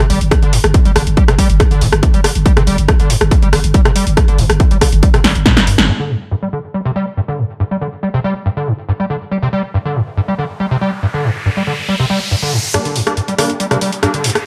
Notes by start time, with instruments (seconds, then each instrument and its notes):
0.10 808-style bass G1, acid bass G3, open hi-hat
0.21 808-style bass G1, closed hi-hat
0.31 acid bass G2, kick, cross-stick, closed hi-hat
0.42 808-style bass G1, acid bass D3, closed hi-hat
0.53 acid bass G2, open hi-hat
0.64 808-style bass G1, cross-stick, closed hi-hat
0.74 acid bass G2, kick, closed hi-hat
0.85 808-style bass G1, acid bass G3, closed hi-hat
0.96 808-style bass G1, acid bass D3, cross-stick, open hi-hat
1.07 808-style bass G1, closed hi-hat
1.17 acid bass G3, kick, closed hi-hat
1.28 808-style bass G1, acid bass C3, cross-stick, closed hi-hat
1.39 acid bass G3, kick, open hi-hat
1.50 808-style bass G1, closed hi-hat
1.60 acid bass G2, kick, cross-stick, closed hi-hat
1.71 808-style bass G1, acid bass D3, closed hi-hat
1.81 808-style bass G1, acid bass G2, open hi-hat
1.93 808-style bass G1, cross-stick, closed hi-hat
2.03 acid bass G2, kick, closed hi-hat
2.14 808-style bass G1, acid bass G3, closed hi-hat
2.24 acid bass D3, cross-stick, open hi-hat
2.35 808-style bass G1, closed hi-hat
2.46 acid bass G3, kick, closed hi-hat
2.57 808-style bass G1, acid bass C3, cross-stick, closed hi-hat
2.67 808-style bass G1, acid bass G3, open hi-hat
2.78 808-style bass G1, closed hi-hat
2.88 acid bass G2, kick, cross-stick, closed hi-hat
3.00 808-style bass G1, acid bass D3, closed hi-hat
3.10 acid bass G2, open hi-hat
3.21 808-style bass G1, cross-stick, closed hi-hat
3.31 acid bass G2, kick, closed hi-hat
3.42 808-style bass G1, acid bass G3, closed hi-hat
3.53 808-style bass G1, acid bass D3, cross-stick, open hi-hat
3.64 808-style bass G1, closed hi-hat
3.74 acid bass G3, kick, closed hi-hat
3.85 808-style bass G1, acid bass C3, cross-stick, closed hi-hat
3.96 acid bass G3, open hi-hat
4.07 808-style bass G1, closed hi-hat
4.17 acid bass G2, kick, cross-stick, closed hi-hat
4.28 808-style bass G1, acid bass D3, closed hi-hat
4.38 808-style bass G1, acid bass G2, open hi-hat
4.50 808-style bass G1, cross-stick, closed hi-hat
4.60 acid bass G2, kick, closed hi-hat
4.71 808-style bass G1, acid bass G3, closed hi-hat
4.81 acid bass D3, kick, cross-stick, open hi-hat
4.92 808-style bass G1, closed hi-hat
5.03 acid bass G3, kick, closed hi-hat
5.14 808-style bass G1, acid bass C3, cross-stick, closed hi-hat
5.24 808-style bass G1, acid bass G3, snare, open hi-hat
5.35 808-style bass G1, closed hi-hat
5.46 acid bass A#2, kick, snare, closed hi-hat
5.57 808-style bass G1, acid bass G2, snare, closed hi-hat
5.67 acid bass G2, open hi-hat
5.78 808-style bass G1, snare, closed hi-hat
5.88 acid bass G2
6.00 acid bass D3
6.10 acid bass G2
6.31 acid bass G2
6.42 acid bass G3
6.53 acid bass D3
6.74 acid bass G3
6.85 acid bass C3
6.96 acid bass G3
7.17 acid bass G2
7.28 acid bass D3
7.39 acid bass G2
7.60 acid bass G2
7.71 acid bass G3
7.81 acid bass D3
8.03 acid bass G3
8.14 acid bass C3
8.24 acid bass G3
8.46 acid bass G2
8.57 acid bass D3
8.67 acid bass G2
8.89 acid bass G2
9.00 acid bass G3
9.10 acid bass D3
9.31 acid bass G3, riser
9.43 acid bass C3
9.53 acid bass G3
9.74 acid bass G2
9.85 acid bass D3
9.96 acid bass G2
10.17 acid bass G2
10.28 acid bass G3
10.39 acid bass D3
10.60 acid bass G3
10.71 acid bass C3
10.81 acid bass G3
11.03 acid bass G2
11.14 acid bass D3
11.24 acid bass G2
11.46 acid bass G2
11.57 acid bass G3
11.67 acid bass D3
11.89 acid bass G3
12.00 acid bass C3
12.10 acid bass G3
12.31 acid bass G2
12.42 acid bass D3
12.53 acid bass G2
12.74 acid bass G2, synth stab G3 A#3 D4, cross-stick, closed hi-hat, riser
12.85 acid bass D3, closed hi-hat
12.96 acid bass G2, open hi-hat
13.07 synth stab G3 A#3 D4, cross-stick, closed hi-hat
13.17 acid bass G2, closed hi-hat
13.28 acid bass G3, closed hi-hat
13.38 acid bass D3, synth stab G3 A#3 D4, cross-stick, open hi-hat
13.50 closed hi-hat
13.60 acid bass G3, closed hi-hat
13.71 acid bass C3, synth stab G3 A#3 D4, cross-stick, closed hi-hat
13.81 acid bass G3, open hi-hat
13.93 closed hi-hat
14.03 acid bass G2, synth stab G3 A#3 D4, cross-stick, closed hi-hat
14.14 acid bass D3, closed hi-hat
14.24 acid bass G2, open hi-hat
14.30 closed hi-hat
14.35 cross-stick, closed hi-hat